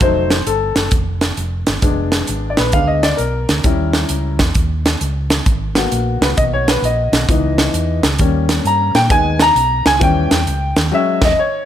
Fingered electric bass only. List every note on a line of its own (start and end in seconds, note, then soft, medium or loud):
0.01 0.40 F1 loud
0.46 0.72 G1 medium
0.76 0.89 F#1 medium
0.92 1.31 F1 medium
1.37 1.63 F1 medium
1.68 1.81 G1 medium
1.82 2.21 F1 loud
2.29 2.54 G#1 medium
2.59 2.72 A#1 loud
2.73 3.12 D2 medium
3.19 3.44 B1 medium
3.49 3.62 D2 medium
3.64 4.03 D#2 medium
4.10 4.40 C#2 medium
4.40 4.53 E2 medium
4.55 4.94 D#2 medium
5.01 5.40 C#2 medium
5.46 5.85 G#1 loud
5.92 6.17 A#1 medium
6.21 6.35 C#2 medium
6.38 6.76 B1 medium
6.82 7.08 A#1 medium
7.12 7.26 B1 loud
7.29 7.67 C#2 loud
7.74 7.99 E2 medium
8.03 8.17 C#2 medium
8.20 8.58 D#2 loud
8.64 8.90 G2 medium
8.95 9.08 A#2 medium
9.11 9.49 D#2 loud
9.55 9.81 B1 medium
9.86 9.99 C#2 medium
10.01 10.27 D#2 loud
10.31 10.45 E2 medium
10.47 10.72 C#2 medium
10.77 10.90 D#2 medium
11.22 11.33 E1 medium